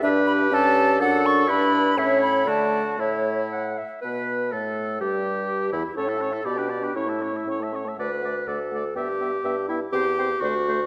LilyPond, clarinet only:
\new Staff \with { instrumentName = "Clarinet" } { \time 2/4 \key a \mixolydian \tempo 4 = 123 g'2 | a'4 b'4 | cis''4 d''4 | e''4 fis''8 e''8 |
b'4 a'4 | g'4. e'8 | a'4 g'4 | e'4. r8 |
b'4 a'4 | g'4. e'8 | \key c \lydian g'4 fis'4 | }